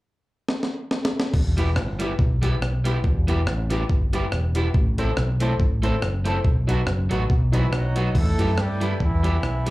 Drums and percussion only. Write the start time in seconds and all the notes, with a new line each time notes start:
0.48 snare
0.63 snare
0.91 snare
1.05 snare
1.20 snare
1.34 kick, crash
1.58 closed hi-hat
1.76 cross-stick
2.00 closed hi-hat
2.19 kick
2.43 closed hi-hat
2.62 cross-stick
2.85 closed hi-hat
3.04 kick
3.28 closed hi-hat
3.47 cross-stick
3.70 closed hi-hat
3.90 kick
4.13 closed hi-hat
4.32 cross-stick
4.55 closed hi-hat
4.74 kick
4.98 closed hi-hat
5.17 cross-stick
5.40 closed hi-hat
5.60 kick
5.83 closed hi-hat
6.02 cross-stick
6.26 closed hi-hat
6.45 kick
6.69 closed hi-hat
6.87 cross-stick
7.11 closed hi-hat
7.30 kick
7.53 closed hi-hat
7.73 cross-stick
7.96 closed hi-hat
8.15 kick, crash
8.39 closed hi-hat
8.58 cross-stick
8.81 closed hi-hat
9.00 kick
9.24 closed hi-hat
9.43 cross-stick
9.66 closed hi-hat